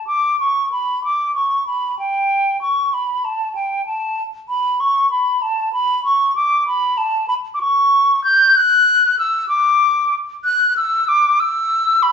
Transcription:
0, 0, Header, 1, 2, 480
1, 0, Start_track
1, 0, Key_signature, 2, "major"
1, 0, Tempo, 628931
1, 63, Time_signature, 12, 3, 24, 8
1, 9252, End_track
2, 0, Start_track
2, 0, Title_t, "Flute"
2, 0, Program_c, 0, 73
2, 53, Note_on_c, 0, 86, 84
2, 298, Note_off_c, 0, 86, 0
2, 306, Note_on_c, 0, 85, 79
2, 544, Note_off_c, 0, 85, 0
2, 549, Note_on_c, 0, 83, 77
2, 787, Note_off_c, 0, 83, 0
2, 795, Note_on_c, 0, 86, 84
2, 1027, Note_off_c, 0, 86, 0
2, 1032, Note_on_c, 0, 85, 80
2, 1271, Note_off_c, 0, 85, 0
2, 1275, Note_on_c, 0, 83, 74
2, 1511, Note_off_c, 0, 83, 0
2, 1521, Note_on_c, 0, 79, 87
2, 1985, Note_off_c, 0, 79, 0
2, 1998, Note_on_c, 0, 85, 78
2, 2243, Note_on_c, 0, 83, 73
2, 2254, Note_off_c, 0, 85, 0
2, 2479, Note_on_c, 0, 81, 80
2, 2490, Note_off_c, 0, 83, 0
2, 2706, Note_off_c, 0, 81, 0
2, 2711, Note_on_c, 0, 79, 77
2, 2940, Note_off_c, 0, 79, 0
2, 2947, Note_on_c, 0, 81, 87
2, 3221, Note_off_c, 0, 81, 0
2, 3426, Note_on_c, 0, 83, 90
2, 3665, Note_on_c, 0, 85, 92
2, 3677, Note_off_c, 0, 83, 0
2, 3895, Note_off_c, 0, 85, 0
2, 3899, Note_on_c, 0, 83, 80
2, 4137, Note_on_c, 0, 81, 90
2, 4149, Note_off_c, 0, 83, 0
2, 4369, Note_off_c, 0, 81, 0
2, 4374, Note_on_c, 0, 83, 98
2, 4608, Note_off_c, 0, 83, 0
2, 4617, Note_on_c, 0, 85, 89
2, 4848, Note_off_c, 0, 85, 0
2, 4853, Note_on_c, 0, 86, 83
2, 5086, Note_off_c, 0, 86, 0
2, 5095, Note_on_c, 0, 83, 98
2, 5324, Note_on_c, 0, 81, 91
2, 5335, Note_off_c, 0, 83, 0
2, 5555, Note_off_c, 0, 81, 0
2, 5560, Note_on_c, 0, 83, 97
2, 5605, Note_off_c, 0, 83, 0
2, 5756, Note_on_c, 0, 86, 68
2, 5802, Note_off_c, 0, 86, 0
2, 5805, Note_on_c, 0, 85, 101
2, 6285, Note_off_c, 0, 85, 0
2, 6289, Note_on_c, 0, 91, 100
2, 6534, Note_on_c, 0, 90, 116
2, 6546, Note_off_c, 0, 91, 0
2, 7010, Note_off_c, 0, 90, 0
2, 7015, Note_on_c, 0, 88, 103
2, 7234, Note_off_c, 0, 88, 0
2, 7239, Note_on_c, 0, 86, 106
2, 7748, Note_off_c, 0, 86, 0
2, 7971, Note_on_c, 0, 90, 105
2, 8200, Note_off_c, 0, 90, 0
2, 8218, Note_on_c, 0, 88, 109
2, 8460, Note_on_c, 0, 86, 104
2, 8471, Note_off_c, 0, 88, 0
2, 8701, Note_on_c, 0, 88, 121
2, 8712, Note_off_c, 0, 86, 0
2, 9178, Note_on_c, 0, 83, 104
2, 9190, Note_off_c, 0, 88, 0
2, 9252, Note_off_c, 0, 83, 0
2, 9252, End_track
0, 0, End_of_file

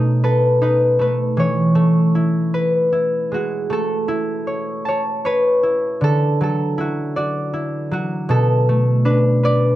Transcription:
0, 0, Header, 1, 2, 480
1, 0, Start_track
1, 0, Key_signature, 3, "major"
1, 0, Tempo, 769231
1, 870, Time_signature, 6, 3, 24, 8
1, 3760, Tempo, 758534
1, 6121, End_track
2, 0, Start_track
2, 0, Title_t, "Harp"
2, 0, Program_c, 0, 46
2, 0, Note_on_c, 0, 47, 76
2, 0, Note_on_c, 0, 57, 73
2, 0, Note_on_c, 0, 59, 68
2, 0, Note_on_c, 0, 63, 75
2, 0, Note_on_c, 0, 69, 95
2, 148, Note_on_c, 0, 71, 77
2, 149, Note_off_c, 0, 69, 0
2, 151, Note_on_c, 0, 69, 72
2, 381, Note_off_c, 0, 63, 0
2, 384, Note_on_c, 0, 63, 77
2, 388, Note_off_c, 0, 71, 0
2, 390, Note_on_c, 0, 71, 71
2, 616, Note_off_c, 0, 57, 0
2, 618, Note_on_c, 0, 57, 59
2, 630, Note_off_c, 0, 71, 0
2, 632, Note_on_c, 0, 71, 76
2, 696, Note_off_c, 0, 71, 0
2, 854, Note_on_c, 0, 52, 75
2, 870, Note_on_c, 0, 73, 85
2, 891, Note_off_c, 0, 63, 0
2, 901, Note_off_c, 0, 47, 0
2, 1090, Note_off_c, 0, 57, 0
2, 1092, Note_on_c, 0, 57, 81
2, 1144, Note_off_c, 0, 59, 0
2, 1341, Note_on_c, 0, 64, 67
2, 1522, Note_off_c, 0, 69, 0
2, 1584, Note_on_c, 0, 71, 75
2, 1622, Note_off_c, 0, 52, 0
2, 1822, Note_off_c, 0, 64, 0
2, 1825, Note_on_c, 0, 64, 68
2, 2063, Note_off_c, 0, 73, 0
2, 2069, Note_on_c, 0, 56, 55
2, 2085, Note_on_c, 0, 66, 70
2, 2106, Note_off_c, 0, 57, 0
2, 2308, Note_on_c, 0, 57, 72
2, 2325, Note_on_c, 0, 69, 84
2, 2349, Note_off_c, 0, 56, 0
2, 2544, Note_off_c, 0, 64, 0
2, 2547, Note_on_c, 0, 64, 76
2, 2789, Note_on_c, 0, 73, 61
2, 2863, Note_off_c, 0, 71, 0
2, 3027, Note_on_c, 0, 81, 67
2, 3046, Note_off_c, 0, 73, 0
2, 3048, Note_on_c, 0, 73, 78
2, 3112, Note_off_c, 0, 73, 0
2, 3275, Note_on_c, 0, 73, 70
2, 3282, Note_on_c, 0, 71, 87
2, 3512, Note_off_c, 0, 64, 0
2, 3514, Note_on_c, 0, 64, 61
2, 3605, Note_off_c, 0, 66, 0
2, 3695, Note_off_c, 0, 69, 0
2, 3749, Note_on_c, 0, 50, 69
2, 3768, Note_on_c, 0, 69, 99
2, 3787, Note_off_c, 0, 73, 0
2, 3934, Note_off_c, 0, 81, 0
2, 4001, Note_on_c, 0, 54, 72
2, 4015, Note_off_c, 0, 69, 0
2, 4018, Note_on_c, 0, 69, 72
2, 4233, Note_off_c, 0, 64, 0
2, 4236, Note_on_c, 0, 64, 70
2, 4252, Note_on_c, 0, 66, 69
2, 4393, Note_off_c, 0, 57, 0
2, 4479, Note_on_c, 0, 74, 77
2, 4481, Note_off_c, 0, 66, 0
2, 4483, Note_on_c, 0, 66, 70
2, 4572, Note_off_c, 0, 71, 0
2, 4713, Note_off_c, 0, 64, 0
2, 4715, Note_on_c, 0, 64, 73
2, 4947, Note_off_c, 0, 54, 0
2, 4955, Note_on_c, 0, 54, 65
2, 4964, Note_off_c, 0, 66, 0
2, 4966, Note_on_c, 0, 66, 71
2, 5192, Note_on_c, 0, 47, 79
2, 5200, Note_off_c, 0, 69, 0
2, 5202, Note_on_c, 0, 69, 99
2, 5230, Note_off_c, 0, 50, 0
2, 5230, Note_off_c, 0, 54, 0
2, 5445, Note_on_c, 0, 57, 72
2, 5647, Note_off_c, 0, 74, 0
2, 5673, Note_on_c, 0, 62, 68
2, 5676, Note_on_c, 0, 71, 78
2, 5739, Note_off_c, 0, 71, 0
2, 5916, Note_on_c, 0, 71, 68
2, 5925, Note_on_c, 0, 74, 99
2, 6121, Note_off_c, 0, 47, 0
2, 6121, Note_off_c, 0, 57, 0
2, 6121, Note_off_c, 0, 62, 0
2, 6121, Note_off_c, 0, 64, 0
2, 6121, Note_off_c, 0, 66, 0
2, 6121, Note_off_c, 0, 69, 0
2, 6121, Note_off_c, 0, 71, 0
2, 6121, Note_off_c, 0, 74, 0
2, 6121, End_track
0, 0, End_of_file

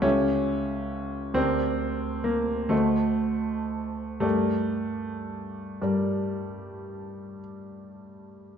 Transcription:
0, 0, Header, 1, 2, 480
1, 0, Start_track
1, 0, Key_signature, -2, "minor"
1, 0, Tempo, 882353
1, 21, Time_signature, 9, 3, 24, 8
1, 981, Tempo, 913242
1, 1461, Tempo, 972447
1, 1941, Tempo, 1073345
1, 2901, Tempo, 1032702
1, 4175, End_track
2, 0, Start_track
2, 0, Title_t, "Grand piano"
2, 0, Program_c, 0, 0
2, 0, Control_c, 0, 64, 127
2, 10, Note_on_c, 0, 61, 95
2, 11, Note_on_c, 0, 37, 54
2, 14, Note_on_c, 0, 67, 50
2, 16, Note_on_c, 0, 69, 46
2, 19, Note_on_c, 0, 76, 45
2, 31, Control_c, 0, 64, 0
2, 134, Control_c, 0, 64, 127
2, 713, Note_off_c, 0, 37, 0
2, 714, Note_off_c, 0, 67, 0
2, 715, Note_off_c, 0, 69, 0
2, 716, Note_off_c, 0, 76, 0
2, 729, Note_on_c, 0, 38, 55
2, 731, Note_on_c, 0, 60, 88
2, 734, Note_off_c, 0, 61, 0
2, 734, Note_on_c, 0, 70, 44
2, 736, Note_on_c, 0, 67, 44
2, 739, Note_on_c, 0, 74, 43
2, 749, Control_c, 0, 64, 0
2, 851, Control_c, 0, 64, 127
2, 1210, Note_on_c, 0, 58, 75
2, 1215, Note_off_c, 0, 60, 0
2, 1435, Note_off_c, 0, 38, 0
2, 1438, Note_off_c, 0, 70, 0
2, 1439, Note_off_c, 0, 67, 0
2, 1440, Note_off_c, 0, 74, 0
2, 1447, Note_on_c, 0, 57, 82
2, 1451, Note_on_c, 0, 38, 49
2, 1452, Note_on_c, 0, 72, 44
2, 1455, Note_on_c, 0, 66, 40
2, 1455, Note_on_c, 0, 75, 40
2, 1457, Note_off_c, 0, 58, 0
2, 1471, Control_c, 0, 64, 0
2, 1573, Control_c, 0, 64, 127
2, 2160, Note_off_c, 0, 38, 0
2, 2160, Note_off_c, 0, 72, 0
2, 2161, Note_off_c, 0, 66, 0
2, 2161, Note_off_c, 0, 75, 0
2, 2164, Note_off_c, 0, 57, 0
2, 2171, Note_on_c, 0, 57, 78
2, 2171, Note_on_c, 0, 67, 42
2, 2173, Note_on_c, 0, 43, 48
2, 2175, Note_on_c, 0, 70, 41
2, 2177, Note_on_c, 0, 74, 42
2, 2193, Control_c, 0, 64, 0
2, 2294, Control_c, 0, 64, 127
2, 2877, Note_off_c, 0, 67, 0
2, 2878, Note_off_c, 0, 43, 0
2, 2879, Note_off_c, 0, 70, 0
2, 2880, Note_off_c, 0, 74, 0
2, 2892, Note_on_c, 0, 55, 59
2, 2893, Note_on_c, 0, 43, 43
2, 2893, Note_on_c, 0, 67, 39
2, 2894, Note_on_c, 0, 70, 38
2, 2895, Note_off_c, 0, 57, 0
2, 2897, Note_on_c, 0, 74, 38
2, 3618, Note_off_c, 0, 55, 0
2, 4175, Note_off_c, 0, 43, 0
2, 4175, Note_off_c, 0, 67, 0
2, 4175, Note_off_c, 0, 70, 0
2, 4175, Note_off_c, 0, 74, 0
2, 4175, End_track
0, 0, End_of_file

